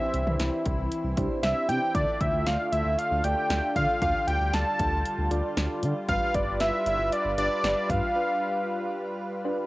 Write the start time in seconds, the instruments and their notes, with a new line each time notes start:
Already playing: analog synth pad E3 C4 E4, synth keys D4 E4 G4 C5, analog synth lead E5
0.14 analog synth bass C2, closed hi-hat
0.27 analog synth bass C2, mid tom
0.40 analog synth bass C2, snare, closed hi-hat
0.66 analog synth bass C2, kick, closed hi-hat
0.78 analog synth bass C2
0.92 closed hi-hat
1.04 analog synth bass C2
1.17 analog synth bass C2, synth keys D4 E4 G4 C5, kick, closed hi-hat
1.43 analog synth bass C2, analog synth lead E5, snare, closed hi-hat
1.69 analog synth bass C3, analog synth lead G5, closed hi-hat
1.95 analog synth bass D2, analog synth pad D3 A3 F4, synth keys D4 F4 A4 D5, analog synth lead D5, kick, closed hi-hat
2.21 analog synth bass D2, analog synth lead E5, kick, closed hi-hat
2.34 analog synth bass D2
2.46 analog synth bass D2, analog synth lead F5, snare, closed hi-hat
2.72 analog synth bass D2, analog synth lead E5, closed hi-hat
2.85 analog synth bass D2
2.98 analog synth lead F5, closed hi-hat
3.11 analog synth bass D2
3.24 analog synth bass D2, synth keys D4 F4 A4 D5, analog synth lead G5, closed hi-hat
3.50 analog synth bass D2, snare, closed hi-hat
3.76 analog synth bass D3, analog synth lead F5, kick, closed hi-hat
4.02 analog synth bass D2, analog synth pad G3, synth keys D4 F4 A4 D5, analog synth lead F5, kick, closed hi-hat
4.27 analog synth bass D2, analog synth lead G5, closed hi-hat
4.41 analog synth bass D2
4.53 analog synth bass D2, analog synth lead A5, snare, closed hi-hat
4.79 analog synth bass D2, kick, closed hi-hat
4.92 analog synth bass D2
5.06 closed hi-hat
5.18 analog synth bass D2
5.31 analog synth bass D2, synth keys D4 F4 A4 D5, closed hi-hat
5.57 analog synth bass D2, snare, closed hi-hat
5.83 analog synth bass D3, closed hi-hat
6.09 analog synth bass G1, synth keys D4 F4 G4 B4, analog synth pad B4, analog synth lead F5, kick, closed hi-hat
6.34 analog synth bass G1, analog synth lead D5, kick, closed hi-hat
6.48 analog synth bass G1
6.60 analog synth bass G1, analog synth lead E5, snare, closed hi-hat
6.86 analog synth bass G1, analog synth lead E5, closed hi-hat
6.99 analog synth bass G1
7.12 analog synth lead D5, closed hi-hat
7.25 analog synth bass G1
7.38 analog synth bass G1, synth keys D4 F4 G4 B4, analog synth lead D5, closed hi-hat
7.64 analog synth bass G1, snare, closed hi-hat
7.90 analog synth bass G2, analog synth lead F5, kick, closed hi-hat
8.16 synth keys D4 F4 G4 B4
9.45 synth keys D4 F4 G4 B4